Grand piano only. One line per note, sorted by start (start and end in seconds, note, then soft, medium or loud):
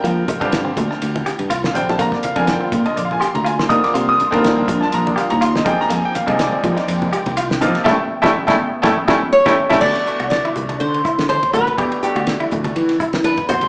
0.00 0.35 D3 medium
0.00 0.36 G3 medium
0.00 0.36 C4 medium
0.00 0.36 F4 medium
0.00 0.36 A#4 medium
0.00 0.48 G5 medium
0.40 1.29 D3 medium
0.40 1.30 G3 medium
0.40 1.30 C4 medium
0.40 1.30 F4 medium
0.40 1.30 G4 medium
1.66 1.76 F5 medium
1.73 1.96 D3 medium
1.73 1.97 G3 medium
1.73 1.97 C4 medium
1.73 1.97 F4 medium
1.73 1.97 C5 medium
1.73 1.88 G5 medium
1.89 2.00 A5 medium
1.98 2.33 D3 medium
1.98 2.33 G3 medium
1.98 2.33 C4 medium
1.98 2.33 F4 medium
1.98 2.33 A#4 medium
1.98 2.13 A#5 loud
2.14 2.24 D5 medium
2.24 2.37 F5 medium
2.35 3.25 D3 medium
2.35 3.25 G3 medium
2.35 3.25 C4 medium
2.35 3.25 F4 medium
2.35 3.26 A#4 medium
2.35 2.48 G#5 loud
2.49 2.84 G5 medium
2.86 2.97 D#5 medium
2.96 3.04 D5 medium
3.05 3.13 F5 medium
3.13 3.21 G#5 medium
3.20 3.33 C6 loud
3.35 3.46 A#5 medium
3.45 3.58 G#5 medium
3.59 3.70 C6 medium
3.69 4.26 D3 medium
3.69 4.26 G3 medium
3.69 4.26 C4 medium
3.69 4.27 F4 medium
3.69 4.27 A#4 medium
3.69 3.83 D#6 loud
3.84 3.95 D6 medium
3.94 4.07 C6 medium
4.09 4.15 D#6 loud
4.31 5.20 D3 medium
4.31 5.21 G3 medium
4.31 5.21 C4 medium
4.31 5.21 F4 medium
4.31 5.21 A#4 loud
4.82 4.93 A5 loud
4.94 5.06 A#5 medium
5.07 5.17 D5 medium
5.17 5.30 F5 medium
5.31 5.41 A#5 medium
5.43 5.55 C6 loud
5.57 5.67 D#5 medium
5.65 6.22 C3 medium
5.65 6.22 F3 medium
5.65 6.22 A#3 medium
5.65 6.22 D#4 medium
5.65 6.23 G#4 medium
5.65 5.79 G5 loud
5.81 5.91 A#5 loud
5.92 6.04 G#5 medium
6.05 6.15 G5 medium
6.15 6.28 F5 medium
6.26 7.16 C3 medium
6.26 7.17 F3 medium
6.26 7.17 A#3 medium
6.26 7.17 D#4 medium
6.26 7.17 G#4 medium
6.26 6.40 D#5 medium
6.40 7.09 D5 medium
7.61 7.84 C3 medium
7.61 7.84 F3 medium
7.61 7.84 A#3 medium
7.61 7.84 D#4 medium
7.61 7.85 F4 medium
7.84 7.94 G3 medium
7.84 7.94 A3 loud
7.84 7.94 C#4 loud
7.84 7.93 E5 medium
7.84 7.94 G5 medium
7.84 7.93 A5 loud
8.22 8.31 G3 loud
8.22 8.31 A3 loud
8.22 8.31 C#4 loud
8.22 8.30 E5 loud
8.22 8.30 G5 medium
8.22 8.30 A5 loud
8.47 8.55 G3 loud
8.47 8.55 A3 loud
8.47 8.55 C#4 loud
8.47 8.55 E5 medium
8.47 8.55 G5 loud
8.47 8.55 A5 medium
8.82 8.92 G3 loud
8.82 8.92 A3 loud
8.82 8.92 C#4 medium
8.82 8.92 E5 medium
8.82 8.92 G5 loud
8.82 8.91 A5 medium
9.07 9.17 G3 loud
9.07 9.17 A3 loud
9.07 9.17 C#4 loud
9.07 9.16 E5 medium
9.07 9.16 G5 medium
9.07 9.17 A5 medium
9.45 9.53 G3 loud
9.45 9.53 A3 loud
9.45 9.53 C#4 loud
9.45 9.53 E5 loud
9.45 9.53 G5 loud
9.45 9.53 A5 medium
9.69 9.78 G3 loud
9.69 9.78 A3 loud
9.69 9.78 C#4 medium
9.69 9.77 E5 loud
9.69 9.78 G5 medium
9.69 9.77 A5 loud
9.81 10.04 B2 medium
9.81 10.04 E3 medium
9.81 10.05 A3 medium
9.81 10.05 D4 medium
9.81 10.05 F#4 medium
10.06 10.97 B2 medium
10.06 10.97 E3 medium
10.06 10.97 A3 medium
10.06 10.97 D4 medium
10.06 10.97 F#4 medium
11.77 12.00 B2 medium
11.77 12.00 E3 medium
11.77 12.01 A3 medium
11.77 12.01 D4 medium
11.77 12.01 G4 medium
12.03 12.93 B2 medium
12.03 12.93 E3 medium
12.03 12.93 A3 medium
12.03 12.93 D4 medium
12.03 12.93 A4 medium